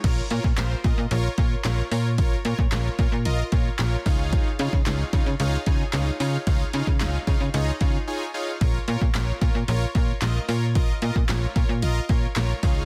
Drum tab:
CC |x---------------|----------------|----------------|----------------|
HH |x-x-x-x-x-x-x-o-|x-x-x-x-x-x-x-o-|x-x-x-x-x-x-x-o-|x-x-x-x-x-x-----|
CP |----x-------x---|----x-------x---|----x-------x---|----x-----------|
SD |----o-------o---|----o-------o---|----o-------o---|----o-----------|
BD |o--o--o---o-----|o--o--o---o---o-|o--o--o---o-----|o--o--o---o-----|

CC |----------------|----------------|
HH |x-x-x-x-x-x-x-o-|x-x-x-x-x-x-x-o-|
CP |----x-------x---|----x-------x---|
SD |----o-------o---|----o-------o---|
BD |o--o--o---o-----|o--o--o---o---o-|